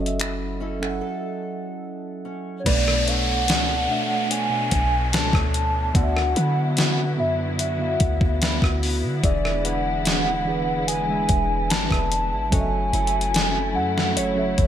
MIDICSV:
0, 0, Header, 1, 8, 480
1, 0, Start_track
1, 0, Tempo, 821918
1, 1554, Time_signature, 4, 2, 24, 8
1, 8568, End_track
2, 0, Start_track
2, 0, Title_t, "Soft synth lead"
2, 0, Program_c, 0, 80
2, 1517, Note_on_c, 0, 73, 69
2, 1558, Note_on_c, 0, 74, 90
2, 1567, Note_off_c, 0, 73, 0
2, 1797, Note_on_c, 0, 78, 99
2, 1806, Note_off_c, 0, 74, 0
2, 2517, Note_on_c, 0, 80, 122
2, 2526, Note_off_c, 0, 78, 0
2, 2995, Note_on_c, 0, 81, 112
2, 3004, Note_off_c, 0, 80, 0
2, 3477, Note_on_c, 0, 78, 111
2, 3486, Note_off_c, 0, 81, 0
2, 4196, Note_off_c, 0, 78, 0
2, 4200, Note_on_c, 0, 76, 90
2, 4282, Note_off_c, 0, 76, 0
2, 4438, Note_on_c, 0, 76, 97
2, 5132, Note_off_c, 0, 76, 0
2, 5395, Note_on_c, 0, 74, 88
2, 5633, Note_on_c, 0, 78, 106
2, 5641, Note_off_c, 0, 74, 0
2, 6351, Note_on_c, 0, 80, 116
2, 6360, Note_off_c, 0, 78, 0
2, 6831, Note_on_c, 0, 81, 116
2, 6840, Note_off_c, 0, 80, 0
2, 7312, Note_on_c, 0, 80, 118
2, 7321, Note_off_c, 0, 81, 0
2, 8032, Note_on_c, 0, 78, 95
2, 8041, Note_off_c, 0, 80, 0
2, 8274, Note_on_c, 0, 73, 89
2, 8283, Note_off_c, 0, 78, 0
2, 8568, Note_off_c, 0, 73, 0
2, 8568, End_track
3, 0, Start_track
3, 0, Title_t, "Steel-string acoustic guitar"
3, 0, Program_c, 1, 25
3, 0, Note_on_c, 1, 54, 79
3, 113, Note_on_c, 1, 64, 63
3, 349, Note_off_c, 1, 64, 0
3, 352, Note_on_c, 1, 61, 62
3, 356, Note_on_c, 1, 64, 60
3, 359, Note_on_c, 1, 69, 66
3, 588, Note_off_c, 1, 69, 0
3, 590, Note_on_c, 1, 69, 66
3, 1311, Note_off_c, 1, 61, 0
3, 1313, Note_on_c, 1, 61, 58
3, 1549, Note_off_c, 1, 61, 0
3, 1552, Note_on_c, 1, 59, 85
3, 1603, Note_off_c, 1, 64, 0
3, 1677, Note_off_c, 1, 54, 0
3, 1793, Note_on_c, 1, 62, 64
3, 1795, Note_off_c, 1, 69, 0
3, 1797, Note_on_c, 1, 69, 64
3, 1801, Note_on_c, 1, 73, 68
3, 2034, Note_off_c, 1, 69, 0
3, 2036, Note_on_c, 1, 69, 63
3, 2509, Note_off_c, 1, 73, 0
3, 2516, Note_on_c, 1, 73, 68
3, 2992, Note_off_c, 1, 62, 0
3, 2995, Note_off_c, 1, 73, 0
3, 2995, Note_on_c, 1, 62, 63
3, 2997, Note_off_c, 1, 69, 0
3, 2999, Note_on_c, 1, 69, 64
3, 3002, Note_on_c, 1, 73, 70
3, 3473, Note_on_c, 1, 50, 82
3, 3474, Note_off_c, 1, 69, 0
3, 3477, Note_on_c, 1, 66, 77
3, 3526, Note_off_c, 1, 73, 0
3, 3596, Note_off_c, 1, 59, 0
3, 3714, Note_on_c, 1, 59, 63
3, 3715, Note_off_c, 1, 66, 0
3, 3716, Note_off_c, 1, 62, 0
3, 3718, Note_on_c, 1, 64, 66
3, 3721, Note_on_c, 1, 66, 69
3, 3952, Note_off_c, 1, 64, 0
3, 3955, Note_on_c, 1, 64, 63
3, 4425, Note_off_c, 1, 66, 0
3, 4432, Note_on_c, 1, 66, 70
3, 4910, Note_off_c, 1, 59, 0
3, 4912, Note_on_c, 1, 59, 66
3, 4913, Note_off_c, 1, 64, 0
3, 4913, Note_off_c, 1, 66, 0
3, 4915, Note_on_c, 1, 64, 65
3, 4920, Note_on_c, 1, 66, 72
3, 5394, Note_off_c, 1, 66, 0
3, 5394, Note_on_c, 1, 52, 87
3, 5397, Note_on_c, 1, 68, 73
3, 5411, Note_off_c, 1, 50, 0
3, 5631, Note_off_c, 1, 59, 0
3, 5633, Note_off_c, 1, 68, 0
3, 5633, Note_on_c, 1, 59, 63
3, 5634, Note_off_c, 1, 64, 0
3, 5637, Note_on_c, 1, 62, 63
3, 5640, Note_on_c, 1, 68, 69
3, 5866, Note_off_c, 1, 62, 0
3, 5873, Note_on_c, 1, 62, 62
3, 6348, Note_off_c, 1, 68, 0
3, 6355, Note_on_c, 1, 68, 71
3, 6828, Note_off_c, 1, 59, 0
3, 6831, Note_off_c, 1, 62, 0
3, 6835, Note_off_c, 1, 68, 0
3, 6835, Note_on_c, 1, 59, 65
3, 6838, Note_on_c, 1, 62, 68
3, 7311, Note_off_c, 1, 52, 0
3, 7313, Note_on_c, 1, 54, 86
3, 7317, Note_on_c, 1, 73, 76
3, 7362, Note_off_c, 1, 59, 0
3, 7364, Note_off_c, 1, 62, 0
3, 7554, Note_on_c, 1, 64, 66
3, 7557, Note_on_c, 1, 69, 64
3, 7558, Note_off_c, 1, 73, 0
3, 7560, Note_on_c, 1, 73, 74
3, 7791, Note_off_c, 1, 69, 0
3, 7794, Note_on_c, 1, 69, 68
3, 8271, Note_off_c, 1, 73, 0
3, 8273, Note_on_c, 1, 73, 71
3, 8568, Note_off_c, 1, 54, 0
3, 8568, Note_off_c, 1, 64, 0
3, 8568, Note_off_c, 1, 69, 0
3, 8568, Note_off_c, 1, 73, 0
3, 8568, End_track
4, 0, Start_track
4, 0, Title_t, "Synth keys"
4, 0, Program_c, 2, 88
4, 0, Control_c, 2, 64, 127
4, 0, Note_on_c, 2, 54, 79
4, 0, Note_on_c, 2, 61, 78
4, 0, Note_on_c, 2, 69, 74
4, 0, Note_on_c, 2, 76, 93
4, 6, Note_on_c, 2, 75, 70
4, 44, Note_off_c, 2, 76, 0
4, 44, Note_on_c, 2, 76, 88
4, 394, Note_off_c, 2, 54, 0
4, 397, Note_off_c, 2, 61, 0
4, 401, Note_off_c, 2, 69, 0
4, 424, Note_off_c, 2, 76, 0
4, 464, Note_on_c, 2, 54, 83
4, 472, Note_on_c, 2, 61, 74
4, 479, Note_on_c, 2, 69, 69
4, 486, Note_on_c, 2, 78, 90
4, 1279, Note_off_c, 2, 54, 0
4, 1283, Note_off_c, 2, 61, 0
4, 1286, Note_off_c, 2, 69, 0
4, 1290, Note_off_c, 2, 78, 0
4, 1543, Note_on_c, 2, 47, 74
4, 1551, Note_on_c, 2, 57, 69
4, 1558, Note_on_c, 2, 62, 65
4, 1561, Control_c, 2, 64, 0
4, 1562, Note_off_c, 2, 75, 0
4, 1566, Note_on_c, 2, 74, 78
4, 1662, Control_c, 2, 64, 127
4, 2156, Note_off_c, 2, 47, 0
4, 2160, Note_off_c, 2, 57, 0
4, 2164, Note_off_c, 2, 62, 0
4, 2167, Note_off_c, 2, 74, 0
4, 2264, Note_on_c, 2, 47, 72
4, 2272, Note_on_c, 2, 57, 65
4, 2279, Note_on_c, 2, 62, 68
4, 2286, Note_on_c, 2, 76, 81
4, 2573, Note_off_c, 2, 47, 0
4, 2576, Note_off_c, 2, 57, 0
4, 2580, Note_off_c, 2, 62, 0
4, 2584, Note_off_c, 2, 76, 0
4, 2624, Note_on_c, 2, 47, 76
4, 2632, Note_on_c, 2, 57, 71
4, 2639, Note_on_c, 2, 62, 72
4, 2647, Note_on_c, 2, 76, 82
4, 3338, Note_off_c, 2, 47, 0
4, 3342, Note_off_c, 2, 57, 0
4, 3345, Note_off_c, 2, 62, 0
4, 3349, Note_off_c, 2, 76, 0
4, 3462, Note_on_c, 2, 50, 74
4, 3470, Note_on_c, 2, 59, 67
4, 3477, Note_on_c, 2, 66, 65
4, 3480, Control_c, 2, 64, 0
4, 3484, Note_on_c, 2, 74, 63
4, 3517, Note_off_c, 2, 74, 0
4, 3523, Note_on_c, 2, 76, 80
4, 3577, Control_c, 2, 64, 127
4, 4075, Note_off_c, 2, 50, 0
4, 4079, Note_off_c, 2, 59, 0
4, 4083, Note_off_c, 2, 66, 0
4, 4106, Note_off_c, 2, 76, 0
4, 4181, Note_on_c, 2, 50, 76
4, 4189, Note_on_c, 2, 59, 68
4, 4196, Note_on_c, 2, 66, 67
4, 4204, Note_on_c, 2, 76, 81
4, 4491, Note_off_c, 2, 50, 0
4, 4495, Note_off_c, 2, 59, 0
4, 4499, Note_off_c, 2, 66, 0
4, 4503, Note_off_c, 2, 76, 0
4, 4542, Note_on_c, 2, 50, 79
4, 4549, Note_on_c, 2, 59, 72
4, 4557, Note_on_c, 2, 66, 74
4, 4564, Note_on_c, 2, 77, 69
4, 4597, Note_off_c, 2, 77, 0
4, 4602, Note_on_c, 2, 78, 87
4, 5257, Note_off_c, 2, 50, 0
4, 5260, Note_off_c, 2, 59, 0
4, 5264, Note_off_c, 2, 66, 0
4, 5287, Note_off_c, 2, 78, 0
4, 5381, Note_on_c, 2, 52, 73
4, 5389, Note_on_c, 2, 62, 67
4, 5396, Note_on_c, 2, 68, 66
4, 5401, Control_c, 2, 64, 0
4, 5404, Note_on_c, 2, 76, 85
4, 5522, Control_c, 2, 64, 127
4, 5995, Note_off_c, 2, 52, 0
4, 5999, Note_off_c, 2, 62, 0
4, 6002, Note_off_c, 2, 68, 0
4, 6006, Note_off_c, 2, 76, 0
4, 6102, Note_on_c, 2, 52, 75
4, 6109, Note_on_c, 2, 62, 67
4, 6117, Note_on_c, 2, 68, 67
4, 6124, Note_on_c, 2, 71, 82
4, 6411, Note_off_c, 2, 52, 0
4, 6415, Note_off_c, 2, 62, 0
4, 6419, Note_off_c, 2, 68, 0
4, 6423, Note_off_c, 2, 71, 0
4, 6461, Note_on_c, 2, 52, 77
4, 6469, Note_on_c, 2, 62, 72
4, 6476, Note_on_c, 2, 56, 71
4, 6484, Note_on_c, 2, 76, 86
4, 7176, Note_off_c, 2, 52, 0
4, 7180, Note_off_c, 2, 62, 0
4, 7183, Note_off_c, 2, 56, 0
4, 7187, Note_off_c, 2, 76, 0
4, 7299, Note_on_c, 2, 54, 71
4, 7307, Note_on_c, 2, 61, 65
4, 7314, Note_on_c, 2, 69, 65
4, 7321, Control_c, 2, 64, 0
4, 7322, Note_on_c, 2, 75, 65
4, 7356, Note_off_c, 2, 75, 0
4, 7360, Note_on_c, 2, 76, 78
4, 7416, Control_c, 2, 64, 127
4, 7914, Note_off_c, 2, 54, 0
4, 7918, Note_off_c, 2, 61, 0
4, 7922, Note_off_c, 2, 69, 0
4, 7945, Note_off_c, 2, 76, 0
4, 8021, Note_on_c, 2, 54, 75
4, 8029, Note_on_c, 2, 61, 68
4, 8035, Note_on_c, 2, 69, 67
4, 8043, Note_on_c, 2, 78, 82
4, 8331, Note_off_c, 2, 54, 0
4, 8335, Note_off_c, 2, 61, 0
4, 8338, Note_off_c, 2, 69, 0
4, 8342, Note_off_c, 2, 78, 0
4, 8380, Note_on_c, 2, 54, 77
4, 8387, Note_on_c, 2, 61, 74
4, 8394, Note_on_c, 2, 69, 70
4, 8401, Note_on_c, 2, 76, 83
4, 8568, Note_off_c, 2, 54, 0
4, 8568, Note_off_c, 2, 61, 0
4, 8568, Note_off_c, 2, 69, 0
4, 8568, Note_off_c, 2, 76, 0
4, 8568, End_track
5, 0, Start_track
5, 0, Title_t, "String section"
5, 0, Program_c, 3, 48
5, 1554, Note_on_c, 3, 57, 74
5, 1554, Note_on_c, 3, 59, 75
5, 1555, Note_on_c, 3, 47, 73
5, 1555, Note_on_c, 3, 62, 86
5, 3455, Note_off_c, 3, 47, 0
5, 3455, Note_off_c, 3, 57, 0
5, 3455, Note_off_c, 3, 62, 0
5, 3475, Note_on_c, 3, 50, 82
5, 3475, Note_on_c, 3, 54, 76
5, 3475, Note_on_c, 3, 64, 84
5, 5375, Note_off_c, 3, 54, 0
5, 5396, Note_on_c, 3, 56, 75
5, 7291, Note_off_c, 3, 50, 0
5, 7291, Note_off_c, 3, 59, 0
5, 7291, Note_off_c, 3, 64, 0
5, 7296, Note_off_c, 3, 56, 0
5, 7313, Note_on_c, 3, 49, 80
5, 7313, Note_on_c, 3, 54, 77
5, 7313, Note_on_c, 3, 57, 75
5, 7314, Note_on_c, 3, 64, 85
5, 8568, Note_off_c, 3, 49, 0
5, 8568, Note_off_c, 3, 54, 0
5, 8568, Note_off_c, 3, 57, 0
5, 8568, Note_off_c, 3, 64, 0
5, 8568, End_track
6, 0, Start_track
6, 0, Title_t, "808-style bass"
6, 0, Program_c, 4, 38
6, 0, Note_on_c, 4, 30, 100
6, 594, Note_off_c, 4, 30, 0
6, 1556, Note_on_c, 4, 35, 98
6, 2034, Note_on_c, 4, 37, 101
6, 2043, Note_off_c, 4, 35, 0
6, 2262, Note_off_c, 4, 37, 0
6, 2757, Note_on_c, 4, 35, 103
6, 2996, Note_on_c, 4, 37, 100
6, 3005, Note_off_c, 4, 35, 0
6, 3109, Note_off_c, 4, 37, 0
6, 3114, Note_on_c, 4, 38, 104
6, 3460, Note_off_c, 4, 38, 0
6, 3475, Note_on_c, 4, 38, 109
6, 3705, Note_off_c, 4, 38, 0
6, 3718, Note_on_c, 4, 50, 106
6, 4196, Note_on_c, 4, 42, 94
6, 4205, Note_off_c, 4, 50, 0
6, 4652, Note_off_c, 4, 42, 0
6, 4675, Note_on_c, 4, 38, 104
6, 4790, Note_off_c, 4, 38, 0
6, 4795, Note_on_c, 4, 38, 94
6, 5025, Note_off_c, 4, 38, 0
6, 5035, Note_on_c, 4, 38, 105
6, 5275, Note_on_c, 4, 50, 93
6, 5284, Note_off_c, 4, 38, 0
6, 5388, Note_off_c, 4, 50, 0
6, 5395, Note_on_c, 4, 28, 100
6, 5994, Note_on_c, 4, 26, 92
6, 6003, Note_off_c, 4, 28, 0
6, 6297, Note_on_c, 4, 28, 100
6, 6305, Note_off_c, 4, 26, 0
6, 6580, Note_off_c, 4, 28, 0
6, 6596, Note_on_c, 4, 28, 108
6, 6833, Note_on_c, 4, 32, 98
6, 6842, Note_off_c, 4, 28, 0
6, 6948, Note_off_c, 4, 32, 0
6, 6954, Note_on_c, 4, 28, 106
6, 7193, Note_on_c, 4, 32, 95
6, 7202, Note_off_c, 4, 28, 0
6, 7308, Note_off_c, 4, 32, 0
6, 7314, Note_on_c, 4, 30, 110
6, 7544, Note_off_c, 4, 30, 0
6, 7553, Note_on_c, 4, 30, 103
6, 8035, Note_on_c, 4, 42, 89
6, 8044, Note_off_c, 4, 30, 0
6, 8275, Note_on_c, 4, 30, 100
6, 8284, Note_off_c, 4, 42, 0
6, 8502, Note_off_c, 4, 30, 0
6, 8516, Note_on_c, 4, 30, 96
6, 8568, Note_off_c, 4, 30, 0
6, 8568, End_track
7, 0, Start_track
7, 0, Title_t, "Downlifter"
7, 0, Program_c, 5, 103
7, 1553, Note_on_c, 5, 60, 85
7, 5394, Note_off_c, 5, 60, 0
7, 8568, End_track
8, 0, Start_track
8, 0, Title_t, "Drums"
8, 36, Note_on_c, 9, 42, 46
8, 95, Note_off_c, 9, 42, 0
8, 114, Note_on_c, 9, 42, 71
8, 124, Note_on_c, 9, 26, 113
8, 173, Note_off_c, 9, 42, 0
8, 182, Note_off_c, 9, 26, 0
8, 483, Note_on_c, 9, 26, 64
8, 542, Note_off_c, 9, 26, 0
8, 1554, Note_on_c, 9, 36, 116
8, 1555, Note_on_c, 9, 42, 70
8, 1555, Note_on_c, 9, 49, 100
8, 1613, Note_off_c, 9, 36, 0
8, 1613, Note_off_c, 9, 42, 0
8, 1613, Note_off_c, 9, 49, 0
8, 1681, Note_on_c, 9, 37, 64
8, 1740, Note_off_c, 9, 37, 0
8, 1796, Note_on_c, 9, 42, 56
8, 1855, Note_off_c, 9, 42, 0
8, 2033, Note_on_c, 9, 42, 73
8, 2043, Note_on_c, 9, 38, 118
8, 2092, Note_off_c, 9, 42, 0
8, 2101, Note_off_c, 9, 38, 0
8, 2516, Note_on_c, 9, 42, 74
8, 2575, Note_off_c, 9, 42, 0
8, 2753, Note_on_c, 9, 42, 66
8, 2756, Note_on_c, 9, 36, 94
8, 2811, Note_off_c, 9, 42, 0
8, 2815, Note_off_c, 9, 36, 0
8, 2997, Note_on_c, 9, 42, 77
8, 3003, Note_on_c, 9, 38, 114
8, 3055, Note_off_c, 9, 42, 0
8, 3061, Note_off_c, 9, 38, 0
8, 3114, Note_on_c, 9, 36, 97
8, 3124, Note_on_c, 9, 37, 93
8, 3173, Note_off_c, 9, 36, 0
8, 3182, Note_off_c, 9, 37, 0
8, 3237, Note_on_c, 9, 42, 66
8, 3295, Note_off_c, 9, 42, 0
8, 3474, Note_on_c, 9, 36, 121
8, 3475, Note_on_c, 9, 42, 73
8, 3533, Note_off_c, 9, 36, 0
8, 3534, Note_off_c, 9, 42, 0
8, 3601, Note_on_c, 9, 37, 65
8, 3659, Note_off_c, 9, 37, 0
8, 3715, Note_on_c, 9, 42, 59
8, 3774, Note_off_c, 9, 42, 0
8, 3953, Note_on_c, 9, 42, 69
8, 3962, Note_on_c, 9, 38, 126
8, 4011, Note_off_c, 9, 42, 0
8, 4021, Note_off_c, 9, 38, 0
8, 4433, Note_on_c, 9, 42, 76
8, 4492, Note_off_c, 9, 42, 0
8, 4672, Note_on_c, 9, 42, 62
8, 4675, Note_on_c, 9, 36, 95
8, 4730, Note_off_c, 9, 42, 0
8, 4734, Note_off_c, 9, 36, 0
8, 4795, Note_on_c, 9, 36, 91
8, 4853, Note_off_c, 9, 36, 0
8, 4915, Note_on_c, 9, 42, 79
8, 4921, Note_on_c, 9, 38, 116
8, 4974, Note_off_c, 9, 42, 0
8, 4980, Note_off_c, 9, 38, 0
8, 5034, Note_on_c, 9, 36, 88
8, 5045, Note_on_c, 9, 37, 95
8, 5092, Note_off_c, 9, 36, 0
8, 5103, Note_off_c, 9, 37, 0
8, 5157, Note_on_c, 9, 46, 75
8, 5215, Note_off_c, 9, 46, 0
8, 5394, Note_on_c, 9, 36, 122
8, 5394, Note_on_c, 9, 42, 72
8, 5452, Note_off_c, 9, 36, 0
8, 5452, Note_off_c, 9, 42, 0
8, 5520, Note_on_c, 9, 37, 61
8, 5578, Note_off_c, 9, 37, 0
8, 5635, Note_on_c, 9, 42, 59
8, 5693, Note_off_c, 9, 42, 0
8, 5872, Note_on_c, 9, 42, 72
8, 5881, Note_on_c, 9, 38, 125
8, 5930, Note_off_c, 9, 42, 0
8, 5940, Note_off_c, 9, 38, 0
8, 6355, Note_on_c, 9, 42, 73
8, 6413, Note_off_c, 9, 42, 0
8, 6592, Note_on_c, 9, 42, 62
8, 6595, Note_on_c, 9, 36, 92
8, 6650, Note_off_c, 9, 42, 0
8, 6654, Note_off_c, 9, 36, 0
8, 6835, Note_on_c, 9, 42, 82
8, 6841, Note_on_c, 9, 38, 112
8, 6894, Note_off_c, 9, 42, 0
8, 6900, Note_off_c, 9, 38, 0
8, 6953, Note_on_c, 9, 36, 92
8, 6963, Note_on_c, 9, 37, 94
8, 7012, Note_off_c, 9, 36, 0
8, 7021, Note_off_c, 9, 37, 0
8, 7076, Note_on_c, 9, 42, 66
8, 7134, Note_off_c, 9, 42, 0
8, 7313, Note_on_c, 9, 36, 118
8, 7315, Note_on_c, 9, 42, 75
8, 7372, Note_off_c, 9, 36, 0
8, 7373, Note_off_c, 9, 42, 0
8, 7554, Note_on_c, 9, 42, 52
8, 7612, Note_off_c, 9, 42, 0
8, 7635, Note_on_c, 9, 42, 50
8, 7693, Note_off_c, 9, 42, 0
8, 7716, Note_on_c, 9, 42, 50
8, 7774, Note_off_c, 9, 42, 0
8, 7793, Note_on_c, 9, 42, 71
8, 7802, Note_on_c, 9, 38, 120
8, 7851, Note_off_c, 9, 42, 0
8, 7861, Note_off_c, 9, 38, 0
8, 8162, Note_on_c, 9, 38, 64
8, 8220, Note_off_c, 9, 38, 0
8, 8274, Note_on_c, 9, 42, 80
8, 8332, Note_off_c, 9, 42, 0
8, 8514, Note_on_c, 9, 42, 38
8, 8515, Note_on_c, 9, 36, 88
8, 8568, Note_off_c, 9, 36, 0
8, 8568, Note_off_c, 9, 42, 0
8, 8568, End_track
0, 0, End_of_file